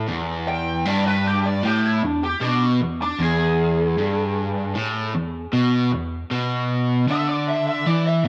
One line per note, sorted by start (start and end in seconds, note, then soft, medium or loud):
0.08 0.85 E2 loud
0.48 0.85 G5 loud
0.85 1.62 G2 loud
0.85 1.05 D5 medium
1.07 1.25 B4 medium
1.27 1.45 G4 medium
1.45 1.64 D5 medium
1.63 2.01 A2 loud
1.63 1.84 G4 medium
1.86 2.04 E4 medium
2.03 2.34 E2 medium
2.03 2.22 D4 medium
2.23 2.42 G4 medium
2.41 2.79 B2 loud
2.41 2.61 D4 medium
2.81 3.12 E2 medium
3.02 3.20 D4 medium
3.20 3.96 E2 loud
3.20 5.51 G#4 medium
3.97 4.74 G2 medium
4.75 5.13 A2 medium
5.14 5.45 E2 medium
5.53 5.91 B2 loud
5.92 6.23 E2 medium
6.31 7.08 B2 loud
7.08 7.85 D3 medium
7.08 7.28 E5 loud
7.29 7.47 D5 medium
7.49 7.66 E5 medium
7.67 7.87 E5 medium
7.86 8.24 E3 medium
7.86 8.05 D5 loud
8.07 8.24 E5 medium